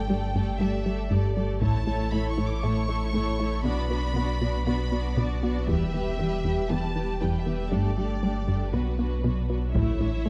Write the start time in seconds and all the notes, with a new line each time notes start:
Already playing: G1 G5
0.09 G2 G3 A3 G4 A4 D5
0.34 G2 G3 A3 G4 A4 D5
0.59 G2 G3 A3 G4 A4 D5 E5
0.85 G3 A3 G4 A4 D5
1.10 G2 G3 A3 G4 A4 D5
1.36 G3 A3 G4 A4 D5
1.61 A1 A2 A3 E4 A4 C#5 A5, taiko
1.87 A3 E4 A4 C#5
2.12 A2 A3 E4 A4 C#5 B5
2.30 C#6
2.38 A2 A3 E4 A4 C#5
2.47 D6
2.63 A2 A3 E4 A4 C#5 C#6
2.89 A3 E4 A4 C#5
3.14 A2 A3 E4 A4 C#5
3.40 A3 E4 A4 C#5
3.65 B1 B2 B3 D4 F#4 D5 B5
3.90 B3 D4 F#4 D5
4.16 B2 B3 D4 F#4 D5
4.41 B2 B3 D4 F#4 D5
4.66 B2 B3 D4 F#4 D5 B5
4.92 B3 D4 F#4 D5
5.17 B2 B3 D4 F#4 D5
5.43 B3 D4 F#4 D5
5.67 E1 E2 E3 G3 G4 B4 E5, taiko
5.93 E3 G3 B3 G4 B4
6.19 E2 E3 G3 B3 G4 B4
6.44 E2 E3 G3 G4 B4
6.70 E2 E3 G3 B3 G4 B4 A5
6.95 E3 G3 B3 G4 B4
7.21 E2 E3 G3 G4 B4 G5
7.39 E5
7.46 E3 G3 B3 G4 B4
7.56 E5
7.71 G1 G2 G3 A3 D4 G4 A4 D5
7.97 G3 A3 D4 G4 A4
8.22 G2 G3 A3 D4 G4 A4
8.48 G2 G3 A3 D4 G4 A4
8.72 B1 B2 F#3 B3 D4 F#4 B4
8.98 F#3 B3 D4 F#4 B4
9.24 B2 F#3 B3 D4 F#4 B4
9.49 F#3 B3 D4 F#4 B4
9.74 A1 A2 A3 E4 C#5 E5, taiko
10.00 A2 A3 D4 E4
10.25 A2 A3 E4